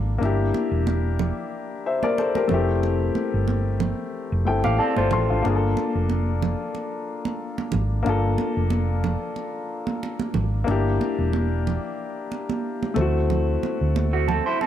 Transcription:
0.00 0.18 G#1 medium
0.00 0.16 A#3 medium
0.00 0.17 D4 medium
0.00 0.18 F4 medium
0.00 0.19 A4 medium
0.18 0.51 G1 medium
0.18 2.45 A#3 medium
0.18 2.46 D4 medium
0.23 2.47 E4 medium
0.23 1.83 G4 medium
0.23 muted conga soft
0.54 high conga medium
0.71 1.30 E1 medium
0.87 muted conga soft
0.87 high conga medium
1.19 muted conga soft
1.19 high conga soft
1.19 low conga medium
1.86 2.03 C5 soft
1.86 2.02 E5 medium
2.03 2.18 A#4 medium
2.03 2.17 D5 medium
2.03 high conga medium
2.18 2.35 A4 soft
2.18 2.35 C5 medium
2.18 muted conga soft
2.35 2.52 G4 soft
2.35 2.66 A#4 medium
2.35 high conga medium
2.48 3.09 F1 medium
2.48 4.41 A3 medium
2.48 4.42 C4 medium
2.48 4.43 E4 medium
2.48 low conga medium
2.54 4.44 G4 medium
2.83 muted conga soft
3.15 high conga medium
3.34 3.92 G1 medium
3.48 high conga medium
3.80 muted conga soft
3.80 high conga soft
3.80 low conga medium
4.32 4.47 F1 medium
4.45 4.63 G1 medium
4.45 5.44 A3 soft
4.45 5.44 C4 soft
4.45 4.80 E4 soft
4.45 4.80 A4 medium
4.45 4.63 G5 medium
4.64 4.78 A1 medium
4.64 4.78 G4 medium
4.64 4.78 F5 medium
4.64 high conga medium
4.79 4.96 C4 medium
4.79 4.96 A4 medium
4.79 4.96 D5 soft
4.79 5.09 A5 medium
4.96 5.10 G1 medium
4.96 5.42 A3 medium
4.96 5.42 F4 medium
4.96 5.11 A4 soft
4.96 5.11 C5 medium
4.96 high conga medium
5.11 5.28 A1 medium
5.11 5.28 F4 soft
5.11 5.29 A4 medium
5.11 5.43 C6 medium
5.11 muted conga soft
5.11 low conga medium
5.30 5.44 G#1 medium
5.30 5.43 D4 soft
5.30 5.45 F4 medium
5.42 5.74 G1 medium
5.42 8.01 A#3 medium
5.42 8.02 D4 medium
5.42 muted conga soft
5.46 8.03 F4 medium
5.46 5.54 G#4 medium
5.55 8.07 A4 medium
5.77 muted conga soft
5.77 high conga medium
5.95 6.54 F1 medium
6.10 high conga medium
6.42 high conga soft
6.42 low conga medium
6.75 muted conga soft
7.25 high conga medium
7.58 high conga medium
7.72 8.03 G#1 medium
7.72 muted conga soft
7.72 low conga medium
8.03 10.62 A#3 medium
8.03 10.63 D4 medium
8.03 muted conga soft
8.07 8.36 G1 medium
8.07 10.64 F4 medium
8.07 10.65 A4 medium
8.38 muted conga soft
8.38 high conga medium
8.57 9.15 F1 medium
8.70 muted conga soft
8.70 high conga medium
9.04 muted conga soft
9.04 high conga soft
9.04 low conga medium
9.36 muted conga soft
9.87 high conga medium
10.03 muted conga soft
10.19 high conga medium
10.34 10.64 G#1 medium
10.34 muted conga soft
10.34 low conga medium
10.64 10.97 G1 medium
10.64 12.91 A#3 medium
10.64 12.92 D4 medium
10.64 muted conga soft
10.69 12.93 E4 medium
10.69 12.94 G4 medium
11.01 high conga medium
11.18 11.77 E1 medium
11.33 high conga medium
11.67 high conga soft
11.67 low conga medium
12.32 muted conga soft
12.49 high conga medium
12.83 high conga medium
12.94 13.56 D2 medium
12.94 14.67 A3 medium
12.94 14.67 C4 medium
12.94 muted conga soft
12.94 low conga medium
12.99 14.67 E4 medium
12.99 14.67 F#4 medium
13.30 muted conga soft
13.30 low conga medium
13.63 muted conga soft
13.63 high conga medium
13.81 14.39 D2 medium
13.96 high conga medium
14.13 14.27 A3 soft
14.13 14.27 F#4 medium
14.28 14.45 C4 medium
14.28 14.45 A4 medium
14.28 high conga soft
14.28 low conga medium
14.46 14.60 E4 medium
14.46 14.60 C5 medium
14.61 14.67 C4 medium
14.61 14.67 A4 medium
14.61 muted conga soft

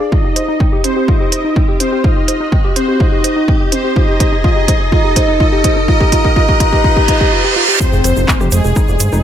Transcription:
0.00 0.12 D4 loud
0.00 0.12 G#4 medium
0.00 0.12 D5 loud
0.00 riser medium
0.12 0.20 F4 medium
0.12 0.75 D#5 medium
0.12 kick loud
0.24 0.32 G4 medium
0.36 0.44 C5 medium
0.36 closed hi-hat loud
0.48 0.56 D#4 medium
0.60 0.65 G5 medium
0.60 kick loud
0.72 0.80 G4 medium
0.84 1.06 C4 medium
0.84 0.89 C5 medium
0.84 1.06 C5 medium
0.84 closed hi-hat loud
0.96 1.06 G4 medium
1.08 1.71 D#4 loud
1.08 1.16 F4 medium
1.08 1.71 D#5 loud
1.08 kick loud
1.21 1.28 G4 medium
1.32 1.40 C5 medium
1.32 closed hi-hat loud
1.45 1.52 D#4 medium
1.56 1.61 G5 medium
1.56 kick loud
1.68 1.76 G4 loud
1.80 2.02 C4 medium
1.80 2.02 C5 medium
1.80 1.85 C5 medium
1.80 closed hi-hat loud
1.93 2.02 G4 medium
2.04 2.12 F4 medium
2.04 2.67 D#5 loud
2.04 kick loud
2.17 2.24 G4 medium
2.28 2.36 C5 medium
2.28 closed hi-hat loud
2.41 2.48 D#4 medium
2.52 2.57 G5 medium
2.52 kick loud
2.65 2.72 G4 loud
2.76 2.98 C4 medium
2.76 2.98 C5 medium
2.76 2.81 C5 medium
2.76 closed hi-hat loud
2.88 2.98 G4 medium
3.00 3.63 D#4 loud
3.00 3.08 F4 medium
3.00 3.63 D#5 loud
3.00 kick loud
3.12 3.20 G4 medium
3.24 3.32 C5 medium
3.24 closed hi-hat loud
3.36 3.44 D#4 medium
3.48 3.53 G5 medium
3.48 kick loud
3.60 3.68 G4 loud
3.72 3.94 C4 medium
3.72 3.77 C5 medium
3.72 3.94 C5 medium
3.72 closed hi-hat loud
3.84 3.94 G4 medium
3.96 4.42 D#4 loud
3.96 4.04 F4 medium
3.96 4.42 D#5 loud
3.96 kick loud
4.08 4.16 G4 medium
4.20 4.28 C5 medium
4.20 kick loud
4.20 closed hi-hat loud
4.32 4.40 D#4 medium
4.44 4.90 D#4 loud
4.44 4.52 F4 medium
4.44 4.90 D#5 loud
4.44 kick loud
4.56 4.64 G4 medium
4.68 4.76 C5 medium
4.68 kick loud
4.68 closed hi-hat loud
4.80 4.88 D#4 medium
4.92 5.38 D#4 loud
4.92 5.00 F4 medium
4.92 5.38 D#5 loud
4.92 kick loud
5.05 5.12 G4 medium
5.16 5.24 C5 medium
5.16 kick loud
5.16 closed hi-hat loud
5.29 5.36 D#4 medium
5.40 5.86 D#4 loud
5.40 5.48 F4 medium
5.40 5.86 D#5 loud
5.40 kick loud
5.53 5.60 G4 medium
5.64 5.72 C5 medium
5.64 kick loud
5.64 closed hi-hat loud
5.77 5.84 D#4 medium
5.88 6.10 D#4 loud
5.88 5.96 F4 medium
5.88 6.10 D#5 loud
5.88 kick loud
6.01 6.08 G4 medium
6.01 kick medium
6.12 6.34 D#4 loud
6.12 6.20 F4 medium
6.12 6.34 D#5 loud
6.12 kick loud
6.12 closed hi-hat loud
6.25 6.32 G4 medium
6.25 kick medium
6.36 6.58 D#4 loud
6.36 6.44 F4 medium
6.36 6.58 D#5 loud
6.36 kick loud
6.48 6.56 G4 medium
6.48 kick medium
6.60 6.82 D#4 loud
6.60 6.68 F4 medium
6.60 6.82 D#5 loud
6.60 kick loud
6.60 closed hi-hat loud
6.72 6.80 G4 medium
6.72 kick medium
6.84 7.06 D#4 loud
6.84 6.92 F4 medium
6.84 7.06 D#5 loud
6.84 kick loud
6.84 reverse cymbal medium
6.96 7.04 G4 medium
6.96 kick medium
7.08 7.30 D#4 loud
7.08 7.16 F4 medium
7.08 7.30 D#5 loud
7.08 kick loud
7.08 closed hi-hat loud
7.21 7.28 G4 medium
7.21 kick loud
7.32 7.40 F4 medium
7.44 7.52 G4 medium
7.56 7.64 F4 medium
7.69 7.76 G4 medium
7.80 8.43 C4 loud
7.80 8.43 C5 loud
7.80 kick loud
7.80 impact medium
7.80 shaker medium
7.93 8.01 F1 medium
7.93 8.00 G#4 medium
7.93 shaker soft
8.04 8.13 F1 loud
8.04 8.12 C5 medium
8.04 cross-stick medium
8.04 closed hi-hat loud
8.04 shaker medium
8.17 8.25 F1 medium
8.17 8.24 D#4 medium
8.17 shaker soft
8.28 8.33 G#5 medium
8.28 kick loud
8.28 clap loud
8.28 shaker soft
8.40 8.49 F1 medium
8.40 8.48 G4 loud
8.40 cross-stick medium
8.40 shaker soft
8.51 8.61 F1 loud
8.51 9.23 G#3 loud
8.51 9.23 G#4 loud
8.51 8.57 C5 medium
8.51 closed hi-hat loud
8.51 shaker loud
8.64 8.73 F1 medium
8.64 8.76 G#4 medium
8.64 shaker soft
8.76 8.84 D#4 medium
8.76 kick loud
8.76 cross-stick medium
8.76 shaker medium
8.88 8.97 F1 medium
8.88 8.96 D5 medium
8.88 shaker soft
9.00 9.09 G1 loud
9.00 9.08 C5 medium
9.00 closed hi-hat loud
9.00 shaker loud
9.12 9.21 F1 medium
9.12 9.20 D#4 medium
9.12 cross-stick medium
9.12 shaker soft

